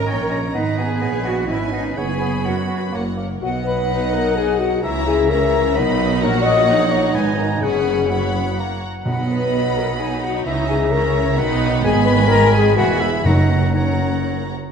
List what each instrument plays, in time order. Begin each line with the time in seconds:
Already playing: viola section C#4, french horn section C#4 D#4, cello section A#4, violin section A#4, flute A#5
0.05 double bass section A#1, bassoon C#4, oboe C#5, clarinet D#5, violin section G5
0.29 bassoon C#4, clarinet D#5, violin section A#5
0.52 double bass section G#1, viola section B3, bassoon B3, french horn section B3, cello section D#4, violin section B4, oboe B4, clarinet D#5, flute D#5
0.76 bassoon B3, cello section G#4, clarinet D#5, flute G#5
1.00 double bass section A#1, bassoon B3, violin section C#5 G#5, clarinet D#5
1.24 bassoon B3, cello section F#4, clarinet D#5, flute F#5
1.48 double bass section G#1, bassoon B3, viola section C#4, cello section E4, oboe B4, violin section B4 G#5, clarinet D#5, flute E5
1.72 bassoon B3, cello section D#4, clarinet D#5, flute D#5
1.96 double bass section F#1, bassoon B3, viola section B3, french horn section C#4, cello section G#4, violin section B4 B5, clarinet C#5, oboe C#5, flute G#5
2.21 bassoon B3, clarinet C#5
2.44 double bass section F#2, bassoon B3, cello section F#4, violin section A#4, clarinet C#5, flute F#5
2.67 bassoon B3, violin section B4, clarinet C#5
2.92 double bass section F#1, bassoon A#3, viola section A#3, french horn section A#3, clarinet C#5, violin section C#5 F#5
3.17 bassoon A#3, violin section A#4, clarinet C#5
3.41 double bass section B1, cello section B2, bassoon F#3, viola section B3, french horn section F#4, clarinet D#5, violin section D#5 F#5, oboe F#5, flute F#5
3.64 french horn section B4, flute B5
3.90 viola section D#4
4.13 french horn section A#4, flute A#5
4.36 french horn section G#4, flute G#5
4.59 french horn section F#4, flute F#5
4.82 double bass section C#2, cello section C#3, bassoon E3, viola section E4, french horn section E4, violin section C#5 E5 A#5, clarinet E5, flute E5, oboe A#5
5.07 french horn section G#4, flute G#5
5.29 viola section C#4, french horn section A#4, violin section C#5 E5 A#5, flute A#5
5.76 double bass section B1, cello section B2, bassoon F#3, viola section D#4, clarinet D#5, violin section D#5 F#5 B5, oboe B5
6.21 double bass section A#1, cello section A#2, viola section F#4, french horn section A#4, clarinet C#5, violin section C#5 F#5, oboe A#5, flute A#5
6.43 french horn section D#5, flute D#6
6.69 viola section D#4
6.91 french horn section C#5, flute C#6
7.13 double bass section G#1, cello section G#2, bassoon B3, french horn section B4, clarinet D#5, violin section D#5 G#5, oboe G#5, flute B5
7.37 french horn section A#4, flute A#5, violin section A#5
7.61 double bass section F#1, cello section F#2, viola section C#4, french horn section G#4, clarinet C#5, violin section C#5 F#5 B5, oboe F#5, flute G#5
8.11 french horn section F#4, violin section C#5 F#5 B5, flute F#5
8.58 bassoon A#3, violin section C#5 F#5 A#5
9.05 double bass section B1, timpani B2, cello section B2, bassoon F#3, viola section B3, french horn section F#4, violin section D#5 F#5 B5, clarinet D#5, flute F#5
9.28 french horn section B4, flute B5
9.75 french horn section A#4, flute A#5
9.98 viola section D#4, french horn section G#4, flute G#5
10.22 french horn section F#4, flute F#5
10.45 double bass section C#2, cello section C#3, bassoon E3, french horn section E4, violin section C#5 E5 A#5, flute E5, clarinet E5, oboe A#5
10.68 french horn section G#4, flute G#5
10.91 viola section C#4, french horn section A#4, violin section C#5 E5 A#5, flute A#5
11.37 double bass section B1, cello section B2, bassoon D#3, viola section D#4, violin section D#5 F#5 B5, clarinet F#5, oboe B5
11.83 double bass section G#1, cello section G#2, bassoon D#3, viola section B3, french horn section G#4, violin section D#5 G#5 B5, clarinet G#5, flute G#5, oboe B5
12.06 french horn section B4, flute B5
12.28 viola section G#3, french horn section A#4, flute A#5
12.53 french horn section G#4, flute G#5
12.76 double bass section E1, cello section E2, bassoon E3, french horn section F#4, violin section E5 G#5 B5, flute F#5, clarinet G#5, oboe B5
13.00 french horn section E4, flute E5
13.25 double bass section F#1, timpani F#2, cello section F#2, bassoon F#3, viola section A#3, french horn section D#4, violin section C#5 F#5 A#5, flute D#5, clarinet F#5, oboe A#5
13.74 bassoon F#3, french horn section C#4, flute C#5, violin section C#5 F#5 A#5, clarinet F#5, oboe A#5